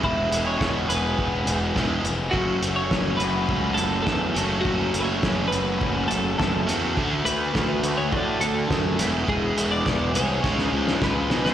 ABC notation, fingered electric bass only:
X:1
M:4/4
L:1/8
Q:1/4=104
K:F#m
V:1 name="Fingered electric bass" clef=bass
E,,, E,,, E,,, E,,, E,,, E,,, E,,, ^E,,, | F,,, F,,, F,,, F,,, C,, F,,, E,, F,,, | F,,, F,,, F,,, F,,, F,,, F,,, F,,, E,, | D,, D,, D,, D,, A,, D,, F,, E,,, |
E,,, E,,, E,,, ^B,,, C,, C,, C,, =B,, |]